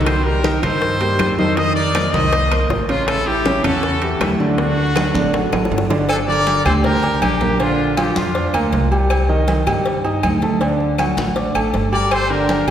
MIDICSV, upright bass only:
0, 0, Header, 1, 2, 480
1, 0, Start_track
1, 0, Key_signature, -2, "minor"
1, 0, Tempo, 376412
1, 87, Time_signature, 4, 2, 24, 8
1, 16203, End_track
2, 0, Start_track
2, 0, Title_t, "Upright bass"
2, 0, Program_c, 0, 32
2, 0, Note_on_c, 0, 36, 84
2, 730, Note_off_c, 0, 36, 0
2, 799, Note_on_c, 0, 43, 99
2, 1472, Note_off_c, 0, 43, 0
2, 1520, Note_on_c, 0, 41, 86
2, 2649, Note_off_c, 0, 41, 0
2, 2720, Note_on_c, 0, 36, 98
2, 3393, Note_off_c, 0, 36, 0
2, 3440, Note_on_c, 0, 33, 95
2, 4569, Note_off_c, 0, 33, 0
2, 4640, Note_on_c, 0, 40, 97
2, 5313, Note_off_c, 0, 40, 0
2, 5359, Note_on_c, 0, 38, 88
2, 6489, Note_off_c, 0, 38, 0
2, 6560, Note_on_c, 0, 33, 103
2, 7010, Note_off_c, 0, 33, 0
2, 7043, Note_on_c, 0, 33, 69
2, 7268, Note_off_c, 0, 33, 0
2, 7281, Note_on_c, 0, 31, 95
2, 8409, Note_off_c, 0, 31, 0
2, 8484, Note_on_c, 0, 38, 101
2, 9155, Note_off_c, 0, 38, 0
2, 9202, Note_on_c, 0, 34, 86
2, 10329, Note_off_c, 0, 34, 0
2, 10405, Note_on_c, 0, 41, 99
2, 10852, Note_off_c, 0, 41, 0
2, 10886, Note_on_c, 0, 38, 74
2, 11109, Note_off_c, 0, 38, 0
2, 11128, Note_on_c, 0, 36, 91
2, 12252, Note_off_c, 0, 36, 0
2, 12324, Note_on_c, 0, 43, 92
2, 12994, Note_off_c, 0, 43, 0
2, 13043, Note_on_c, 0, 38, 92
2, 14169, Note_off_c, 0, 38, 0
2, 14243, Note_on_c, 0, 33, 99
2, 14691, Note_off_c, 0, 33, 0
2, 14728, Note_on_c, 0, 33, 70
2, 14950, Note_off_c, 0, 33, 0
2, 14963, Note_on_c, 0, 31, 89
2, 16089, Note_off_c, 0, 31, 0
2, 16160, Note_on_c, 0, 38, 95
2, 16203, Note_off_c, 0, 38, 0
2, 16203, End_track
0, 0, End_of_file